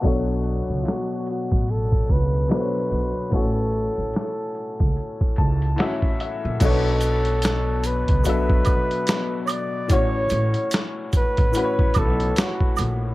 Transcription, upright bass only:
X:1
M:4/4
L:1/16
Q:"Swing 16ths" 1/4=73
K:Bm
V:1 name="Upright bass" clef=bass
B,,,3 C,, z3 A,,,3 C,,2 z2 B,,, z | A,,,3 A,,, z3 C,, z2 C,,2 z3 ^A,,, | B,,,6- B,,, C,, B,,,2 z6 | A,,,2 A,,, z4 A,,, z2 B,,,2 z2 ^A,,,2 |]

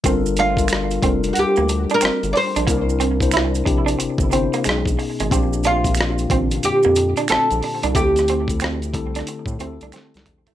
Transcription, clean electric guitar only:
X:1
M:4/4
L:1/16
Q:"Swing 16ths" 1/4=91
K:Gdor
V:1 name="Clean electric guitar"
C z D z3 C z2 B, z D C z2 D | B, z C z E z2 D z2 C B, ^G, z2 G, | C z D z3 C z2 B, z D C z2 D | A, z C z C z2 D z2 C D C z2 A, |]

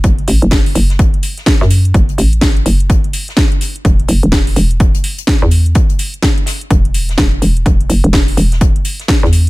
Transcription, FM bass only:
X:1
M:4/4
L:1/16
Q:"Swing 16ths" 1/4=126
K:F#m
V:1 name="FM bass" clef=bass
F,,,2 A,,, F,,,3 F,,,3 z4 F,,3 | F,,,2 A,,,4 F,,,4 z6 | E,,,2 F,,, E,,,3 E,,,3 z4 E,,3 | z8 E,,,4 E,,,2 E,,,2 |
E,,,2 F,,, E,,,3 E,,,3 z4 E,,3 |]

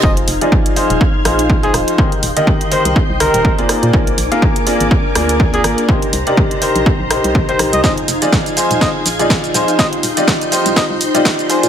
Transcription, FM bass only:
X:1
M:4/4
L:1/16
Q:"Swing 16ths" 1/4=123
K:Fdor
V:1 name="FM bass" clef=bass
F,,,2 F,,, z4 E,,, z2 B,,,4 E,,, z | z2 E,,, z4 C,, z C,,2 E,,,3 z B,, | B,,,2 B,,, z4 A,,, z2 D,,4 A,,, z | z2 C,, z4 B,,, z B,,,2 C,, B,,,2 B,,, C,, |
F,,,2 F,,, z4 E,,, z2 B,,,4 E,,, z | z2 E,,, z4 C,, z C,,2 E,,,3 z B,, |]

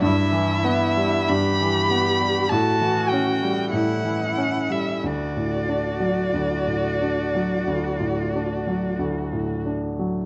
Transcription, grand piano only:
X:1
M:4/4
L:1/16
Q:1/4=46
K:D
V:1 name="Grand piano" clef=bass
G,, E, B, G, G,, E, B, G, A,, E, C G, A,, E, C G, | D,, A,, D F, D,, A,, D F, D,, A,, D F, D,, A,, D F, |]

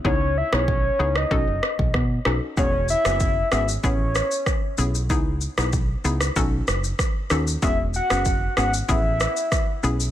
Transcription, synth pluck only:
X:1
M:4/4
L:1/16
Q:1/4=95
K:E
V:1 name="Synth pluck"
[B,DEG] z2 [B,DEG] z2 [B,DEG] z [CDFA]6 [CDFA] z | [B,CFG]3 [B,CFG] z2 [B,CFG] z [B,CEG]6 [B,CEG] z | [B,DEG] z2 [B,DEG] z2 [B,DEG] z [CDFA]6 [CDFA] z | [B,CFG]3 [B,CFG] z2 [B,CFG] z [B,CEG]6 [B,CEG] z |]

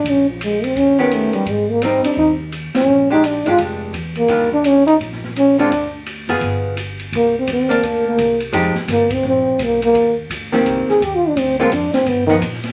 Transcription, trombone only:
X:1
M:4/4
L:1/8
Q:"Swing" 1/4=170
K:Eb
V:1 name="Trombone"
_D F, A, C D =B, =A, G, | A, B, C D E z2 _D- | _D E =D F z3 B,- | B, D _D E z2 D =D- |
D z6 z | [K:Cm] B, C C2 B, B,2 z | z2 B, C C2 B, B,- | B, z4 A (3G F D |
C B, D C =B, ^D, z2 |]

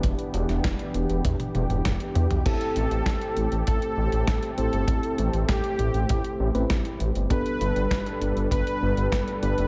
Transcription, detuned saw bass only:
X:1
M:4/4
L:1/16
Q:1/4=99
K:Am
V:1 name="Detuned saw bass" clef=bass
E,,, z E,,, E,,, E,,, z E,,, E,,, E,, z E,,, E,,, E,,, z E,, B,,, | A,,, z A,,, A,,, A,,, z A,,, A,,, A,,, z A,,, A,,, A,,, z A,,, G,,, | A,,, z A,,, A,,, A,,, z A,,, A,,, A,,, z A,,, A,,, A,,, z A,,, G,,, | G,,, z G,,, G,,, G,,, z G,,, G,,, G,,, z G,,, G,,, G,,, z G,,, F,,, |]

